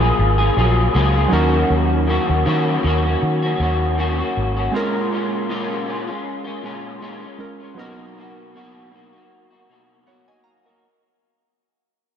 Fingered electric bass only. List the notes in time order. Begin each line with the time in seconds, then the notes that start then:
Already playing: A#1
0.18 G#1
0.57 A#1
0.95 C#2
1.32 D#2
1.70 D#2
2.29 D#2
2.46 D#3
2.84 D#2
3.22 D#3
3.59 D#2
4.37 G#1